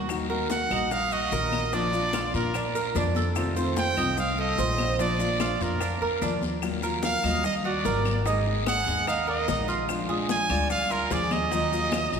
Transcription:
Already playing: upright bass D#2
0.09 nylon-string guitar D#3 A#3 D#4 F#4, high bongo, high conga, long guiro, claves, maracas
0.30 nylon-string guitar A#3 D#4 F#4, cuban tres A#4, high bongo, high conga
0.50 trumpet F#5, high bongo, high conga, short guiro, maracas
0.70 upright bass A#1, nylon-string guitar A#3 D#4 F#4, cuban tres D#5, high bongo, low conga, short guiro, claves, maracas
0.91 trumpet F5, muted nylon-string guitar stroke, high bongo, high conga, long guiro, maracas
1.11 cuban tres F#4, trumpet D#5, high conga, maracas
1.32 upright bass A#1, nylon-string guitar D#3 A#3 D#4 F#4, cuban tres A#4, high bongo, low bongo, short guiro, maracas
1.52 high bongo, high conga, short guiro, claves, maracas
1.72 nylon-string guitar F3 A#3 D4 F4, cuban tres D4, trumpet D5, high bongo, high conga, long guiro, maracas
1.93 nylon-string guitar A#3 D4 F4, high bongo, high conga, maracas
2.13 cuban tres F4, high bongo, high conga, short guiro, claves, maracas
2.34 upright bass A#2, nylon-string guitar A#3 D4 F4, trumpet A#4, high bongo, high conga, short guiro, maracas
2.54 cuban tres D4, muted nylon-string guitar stroke, high bongo, high conga, long guiro, claves, maracas
2.74 cuban tres A#4, high conga, maracas
2.94 upright bass F2, nylon-string guitar F3 A#3 D4 F4, cuban tres D4, high bongo, low bongo, high conga, short guiro, maracas
3.15 cuban tres A4, high bongo, high conga, short guiro, maracas
3.35 nylon-string guitar C3 D#3 A3 C4 F4, high bongo, high conga, long guiro, claves, maracas
3.56 nylon-string guitar D#3 A3 C4 F4, cuban tres C5, high bongo, high conga, maracas
3.77 trumpet G5, high bongo, high conga, short guiro, maracas
3.97 upright bass C2, nylon-string guitar D#3 A3 C4 F4, cuban tres D#5, high bongo, low conga, short guiro, claves, maracas
4.17 trumpet F5, muted nylon-string guitar stroke, high bongo, high conga, low conga, long guiro, maracas
4.38 cuban tres A4, trumpet D#5, high conga
4.58 upright bass A#1, nylon-string guitar D#3 A3 C4 F4, cuban tres C5, high bongo, low bongo, short guiro, maracas
4.78 high bongo, high conga, short guiro, claves, maracas
4.99 nylon-string guitar F3 A#3 D4 F4, cuban tres D4, trumpet D5, high bongo, high conga, long guiro, maracas
5.19 nylon-string guitar A#3 D4 F4, high bongo, high conga, maracas
5.40 cuban tres F4, high bongo, high conga, short guiro, claves, maracas
5.60 upright bass F2, nylon-string guitar A#3 D4 F4, trumpet A#4, high bongo, high conga, short guiro, maracas
5.80 cuban tres D4, muted nylon-string guitar stroke, high bongo, high conga, long guiro, claves, maracas
6.01 upright bass F2, cuban tres A#4, high conga
6.21 upright bass D#2, nylon-string guitar F3 A#3 D4 F4, cuban tres D4, high bongo, low bongo, high conga, short guiro, maracas
6.42 high bongo, high conga, short guiro, maracas
6.62 nylon-string guitar D#3 F#3 A#3 F4, high bongo, high conga, long guiro, claves, maracas
6.83 nylon-string guitar F#3 A#3 F4, cuban tres A#4, high bongo, high conga, maracas
7.03 trumpet F5, high bongo, high conga, short guiro, maracas
7.23 upright bass D#2, nylon-string guitar F#3 A#3 F4, cuban tres D#5, high bongo, low conga, short guiro, claves, maracas
7.44 trumpet D#5, muted nylon-string guitar stroke, high bongo, high conga, low conga, long guiro, maracas
7.64 cuban tres F#4, trumpet D5, high conga
7.84 upright bass G#1, nylon-string guitar D#3 F#3 A#3 F4, cuban tres A#4, high bongo, low bongo, high conga, short guiro, maracas
8.05 high bongo, high conga, short guiro, claves, maracas
8.26 nylon-string guitar D#3 G#3 D#4 G#4, cuban tres D#4, high bongo, high conga, long guiro, maracas
8.46 nylon-string guitar G#3 D#4 G#4, high bongo, high conga
8.66 cuban tres G#4, trumpet F#5, high bongo, high conga, short guiro, claves, maracas
8.87 upright bass D#2, nylon-string guitar G#3 D#4 G#4, high bongo, high conga, short guiro, maracas
9.07 cuban tres D#4, trumpet F5, muted nylon-string guitar stroke, high bongo, high conga, long guiro, claves, maracas
9.27 cuban tres A#4, trumpet D#5, high conga
9.48 upright bass A#1, nylon-string guitar D#3 G#3 D#4 G#4, cuban tres D#4, high bongo, low bongo, high conga, short guiro, maracas
9.68 cuban tres F4, high bongo, short guiro, maracas
9.88 nylon-string guitar F3 G#3 D4 F4, high bongo, high conga, long guiro, claves, maracas
10.09 nylon-string guitar G#3 D4 F4, cuban tres G#4, high bongo, high conga
10.29 trumpet G#5, high bongo, high conga, short guiro, maracas
10.49 upright bass D2, nylon-string guitar G#3 D4 F4, cuban tres D5, high bongo, low conga, short guiro, claves, maracas
10.70 trumpet F5, muted nylon-string guitar stroke, high bongo, high conga, low conga, long guiro, maracas
10.90 cuban tres F4, trumpet A#4, high conga, maracas
11.10 upright bass D#2, nylon-string guitar F3 G#3 D4 F4, cuban tres G#4, trumpet D5, high bongo, low bongo, short guiro, maracas
11.31 trumpet D#5, high bongo, high conga, short guiro, claves, maracas
11.51 nylon-string guitar D#3 F#3 A#3 F4, cuban tres D#4, high bongo, high conga, long guiro, maracas
11.72 nylon-string guitar F#3 A#3 F4, high bongo, high conga, maracas
11.92 high bongo, high conga, short guiro, claves, maracas
12.12 upright bass A#1, nylon-string guitar F#3 A#3 F4, high bongo, high conga, short guiro, maracas

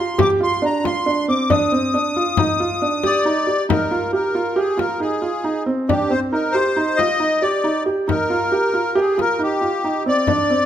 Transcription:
Already playing: felt piano F4
0.00 accordion C6
0.18 felt piano G4, accordion D6, frame drum
0.40 felt piano F4, accordion C6
0.62 felt piano D4, accordion A#5, frame drum
0.84 felt piano F4, accordion C6, frame drum
1.06 felt piano D4
1.28 felt piano C4, accordion D6, frame drum
1.50 felt piano D4, accordion D#6, frame drum
1.72 felt piano C4
1.94 felt piano D4, frame drum
2.16 felt piano F4, frame drum
2.37 felt piano D#4, frame drum
2.60 felt piano F4
2.82 felt piano D4
3.03 felt piano G4, accordion D5, frame drum
3.25 felt piano D#4
3.47 felt piano G4
3.69 felt piano D#4, accordion A#4, frame drum
3.91 felt piano F4
4.13 felt piano G4, accordion A#4
4.35 felt piano F4
4.56 felt piano G4, accordion G#4
4.77 felt piano F4, accordion A#4, frame drum
5.00 felt piano D#4, accordion G#4
5.22 felt piano F4, frame drum
5.44 felt piano D#4
5.66 felt piano C4
5.89 felt piano D4, accordion G4, frame drum
6.10 felt piano C4, accordion C5
6.32 felt piano D#4, accordion A#4
6.52 felt piano G4, accordion C5
6.76 felt piano D#4
6.96 felt piano F4, accordion D#5, frame drum
7.20 felt piano D#4
7.42 felt piano G4, accordion D5, frame drum
7.64 felt piano D#4
7.86 felt piano G4
8.08 felt piano D#4, accordion A#4, frame drum
8.30 felt piano F4
8.52 felt piano G4
8.74 felt piano F4
8.95 felt piano G4, accordion G#4
9.18 felt piano F4, accordion A#4, frame drum
9.39 felt piano D#4, accordion G4
9.61 felt piano F4, frame drum
9.84 felt piano D#4
10.06 felt piano C4, accordion D5
10.27 felt piano D4, frame drum
10.49 felt piano C4, frame drum

